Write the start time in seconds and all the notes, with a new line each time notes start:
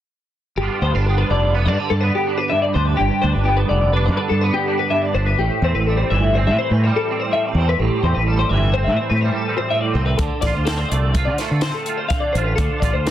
0.57 G1 G2 D3 B3 G4
0.62 D4 F4
0.82 D2 B3 C5
0.94 G1 D4 B4
1.06 B3 G4
1.18 B4
1.30 F1 D3 D5
1.54 B3 B4
1.65 G2 D4 D5
1.78 D3 B4
1.90 G2 A4
2.01 B3 B4
2.15 G4
2.27 D4
2.38 B4
2.50 G2 E5
2.62 D5
2.74 D2 D4 C5
2.86 B4
2.97 G1 G2 G4
3.22 D2 D4 C5
3.33 G1 B4
3.45 B3 G4
3.57 B4
3.69 F1 D3 D5
3.93 D4 B4
4.06 G2 D5
4.17 D3 B4
4.29 G2 A4
4.41 B3 B4
4.54 G4
4.68 D4
4.79 B4
4.90 G2 E5
5.02 D5
5.14 G1 D4 C5
5.26 B4
5.39 A1 A2 G4
5.62 E2 C4 C5
5.74 A1 B4
5.87 G3 A4
5.97 C5
6.10 G1 E3 E5
6.35 C4 C5
6.47 A2 E5
6.59 E3 C5
6.71 A2 B4
6.84 G3 C5
6.96 A4
7.10 C4
7.20 C5
7.33 A2 E5
7.46 D5
7.55 E2 C4 C5
7.69 B4
7.79 A1 A2 G4
8.03 E2 C4 C5
8.15 A1 B4
8.27 G3 A4
8.39 C5
8.49 G1 E3 E5
8.74 C4 C5
8.84 A2 E5
8.97 E3 C5
9.10 A2 B4
9.21 G3 C5
9.34 A4
9.49 C4
9.58 C5
9.70 A2 E5
9.81 D5
9.94 C2 C4 C5
10.06 B4
10.17 D2 D3 A4, kick, closed hi-hat
10.41 A1 D5, kick, snare, closed hi-hat
10.46 F4
10.53 D2 C5
10.65 C4 A4, snare, closed hi-hat
10.78 C5
10.89 C2 A3 D5, closed hi-hat
11.13 F4 B4, kick, closed hi-hat
11.25 D3 D5
11.38 A3 C5, snare, closed hi-hat
11.50 D3 B4
11.61 C4 C5, snare, closed hi-hat
11.74 A4
11.86 F4, closed hi-hat
11.97 C5
12.08 D3 F5, kick, closed hi-hat
12.20 D5
12.33 A1 C5, closed hi-hat
12.37 F4
12.45 B4
12.56 D2 D3 A4, kick, closed hi-hat
12.80 A1 F4 D5, kick, closed hi-hat
12.93 D2 C5
13.06 C4 A4, snare, closed hi-hat